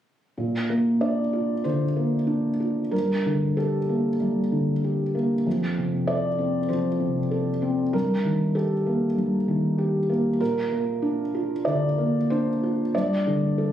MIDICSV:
0, 0, Header, 1, 2, 480
1, 0, Start_track
1, 0, Key_signature, -2, "major"
1, 0, Tempo, 639659
1, 278, Time_signature, 4, 2, 24, 8
1, 3155, Tempo, 619835
1, 8435, Tempo, 636267
1, 10473, End_track
2, 0, Start_track
2, 0, Title_t, "Felt piano"
2, 0, Program_c, 0, 0
2, 282, Note_on_c, 0, 46, 34
2, 404, Control_c, 0, 64, 127
2, 522, Note_on_c, 0, 58, 29
2, 758, Note_on_c, 0, 74, 59
2, 760, Note_on_c, 0, 62, 33
2, 906, Note_off_c, 0, 58, 0
2, 998, Note_on_c, 0, 65, 31
2, 1143, Note_off_c, 0, 62, 0
2, 1212, Note_off_c, 0, 46, 0
2, 1232, Note_on_c, 0, 72, 53
2, 1237, Note_on_c, 0, 50, 26
2, 1238, Note_off_c, 0, 74, 0
2, 1380, Note_off_c, 0, 65, 0
2, 1473, Note_on_c, 0, 58, 30
2, 1618, Note_off_c, 0, 50, 0
2, 1702, Note_on_c, 0, 62, 28
2, 1857, Note_off_c, 0, 58, 0
2, 1951, Note_on_c, 0, 65, 30
2, 2095, Note_off_c, 0, 62, 0
2, 2187, Note_on_c, 0, 70, 51
2, 2191, Note_on_c, 0, 43, 35
2, 2195, Note_off_c, 0, 72, 0
2, 2196, Note_off_c, 0, 65, 0
2, 2211, Control_c, 0, 64, 0
2, 2325, Control_c, 0, 64, 127
2, 2445, Note_on_c, 0, 50, 27
2, 2676, Note_off_c, 0, 70, 0
2, 2678, Note_on_c, 0, 69, 52
2, 2684, Note_on_c, 0, 67, 30
2, 2826, Note_off_c, 0, 50, 0
2, 2921, Note_on_c, 0, 58, 32
2, 3061, Note_off_c, 0, 67, 0
2, 3122, Note_off_c, 0, 43, 0
2, 3154, Note_on_c, 0, 55, 29
2, 3300, Note_off_c, 0, 58, 0
2, 3400, Note_on_c, 0, 50, 27
2, 3541, Note_off_c, 0, 55, 0
2, 3648, Note_on_c, 0, 67, 31
2, 3789, Note_off_c, 0, 50, 0
2, 3883, Note_off_c, 0, 69, 0
2, 3885, Note_on_c, 0, 58, 31
2, 4035, Note_off_c, 0, 67, 0
2, 4128, Note_off_c, 0, 58, 0
2, 4132, Note_on_c, 0, 41, 38
2, 4141, Control_c, 0, 64, 0
2, 4246, Control_c, 0, 64, 127
2, 4374, Note_on_c, 0, 48, 31
2, 4603, Note_on_c, 0, 74, 66
2, 4608, Note_on_c, 0, 69, 34
2, 4753, Note_off_c, 0, 48, 0
2, 4844, Note_on_c, 0, 60, 32
2, 4989, Note_off_c, 0, 69, 0
2, 5058, Note_off_c, 0, 41, 0
2, 5077, Note_on_c, 0, 72, 53
2, 5082, Note_off_c, 0, 74, 0
2, 5088, Note_on_c, 0, 53, 28
2, 5226, Note_off_c, 0, 60, 0
2, 5318, Note_on_c, 0, 48, 31
2, 5468, Note_off_c, 0, 53, 0
2, 5562, Note_on_c, 0, 69, 32
2, 5704, Note_off_c, 0, 48, 0
2, 5800, Note_on_c, 0, 60, 37
2, 5947, Note_off_c, 0, 69, 0
2, 6040, Note_off_c, 0, 72, 0
2, 6041, Note_on_c, 0, 70, 60
2, 6042, Note_off_c, 0, 60, 0
2, 6047, Note_on_c, 0, 43, 37
2, 6058, Control_c, 0, 64, 0
2, 6190, Control_c, 0, 64, 127
2, 6284, Note_on_c, 0, 51, 33
2, 6517, Note_off_c, 0, 70, 0
2, 6520, Note_on_c, 0, 69, 62
2, 6528, Note_on_c, 0, 67, 38
2, 6662, Note_off_c, 0, 51, 0
2, 6765, Note_on_c, 0, 58, 35
2, 6904, Note_off_c, 0, 67, 0
2, 6968, Note_off_c, 0, 43, 0
2, 6994, Note_on_c, 0, 43, 38
2, 7142, Note_off_c, 0, 58, 0
2, 7241, Note_on_c, 0, 51, 37
2, 7476, Note_on_c, 0, 67, 35
2, 7621, Note_off_c, 0, 51, 0
2, 7714, Note_off_c, 0, 69, 0
2, 7717, Note_on_c, 0, 58, 36
2, 7859, Note_off_c, 0, 67, 0
2, 7924, Note_off_c, 0, 43, 0
2, 7955, Note_off_c, 0, 58, 0
2, 7956, Note_on_c, 0, 70, 70
2, 7960, Note_on_c, 0, 46, 41
2, 7967, Control_c, 0, 64, 0
2, 8076, Control_c, 0, 64, 127
2, 8199, Note_on_c, 0, 58, 35
2, 8435, Note_on_c, 0, 62, 39
2, 8578, Note_off_c, 0, 58, 0
2, 8679, Note_on_c, 0, 65, 38
2, 8815, Note_off_c, 0, 62, 0
2, 8885, Note_off_c, 0, 46, 0
2, 8907, Note_on_c, 0, 74, 69
2, 8912, Note_off_c, 0, 70, 0
2, 8918, Note_on_c, 0, 50, 38
2, 9059, Note_off_c, 0, 65, 0
2, 9159, Note_on_c, 0, 58, 36
2, 9302, Note_off_c, 0, 50, 0
2, 9393, Note_off_c, 0, 74, 0
2, 9401, Note_on_c, 0, 72, 67
2, 9409, Note_on_c, 0, 62, 41
2, 9542, Note_off_c, 0, 58, 0
2, 9649, Note_on_c, 0, 65, 41
2, 9785, Note_off_c, 0, 62, 0
2, 9877, Note_off_c, 0, 72, 0
2, 9880, Note_off_c, 0, 65, 0
2, 9886, Control_c, 0, 64, 0
2, 9886, Note_on_c, 0, 74, 69
2, 9890, Note_on_c, 0, 43, 48
2, 10014, Control_c, 0, 64, 127
2, 10128, Note_on_c, 0, 50, 35
2, 10364, Note_on_c, 0, 69, 43
2, 10473, Note_off_c, 0, 43, 0
2, 10473, Note_off_c, 0, 50, 0
2, 10473, Note_off_c, 0, 69, 0
2, 10473, Note_off_c, 0, 74, 0
2, 10473, End_track
0, 0, End_of_file